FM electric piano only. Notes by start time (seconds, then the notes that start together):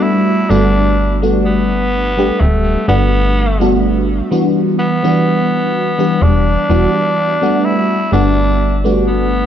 Already playing: G3 A3 B3 D4 F#4
0.49 G3 A3 B3 D4 F#4
1.22 G3 A3 B3 D4 F#4
2.17 G3 A3 B3 D4 G4
2.88 G3 A3 B3 D4 F#4
3.60 G3 A3 B3 D4 F#4
4.31 E3 G3 B3 D4 F#4
5.03 E3 G3 B3 D4 F#4
5.98 E3 G3 B3 D4 G4
6.69 E3 G3 B3 D4 F#4
7.42 G3 A3 B3 D4 F#4
8.12 G3 A3 B3 D4 F#4
8.84 G3 A3 B3 D4 F#4